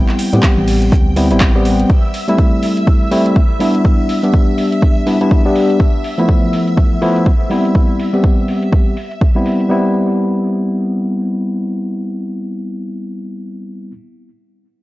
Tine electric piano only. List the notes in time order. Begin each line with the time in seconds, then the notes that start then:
Already playing: G3 B3 C4 E4
0.33 G3 B3 C4 G4
1.16 G3 B3 C4 E4
1.31 G3 B3 C4 E4
1.55 G3 B3 C4 G4
2.28 G3 A3 C4 E4
3.11 G3 A3 C4 E4
3.60 G3 B3 D4 E4
4.23 G3 B3 D4 G4
5.06 G3 B3 D4 E4
5.21 G3 B3 D4 E4
5.45 G3 B3 D4 G4
6.18 F3 A3 B3 E4
7.01 F3 A3 B3 E4
7.50 G3 B3 C4 E4
8.13 G3 B3 C4 G4
9.35 G3 B3 C4 E4
9.69 G3 B3 C4 E4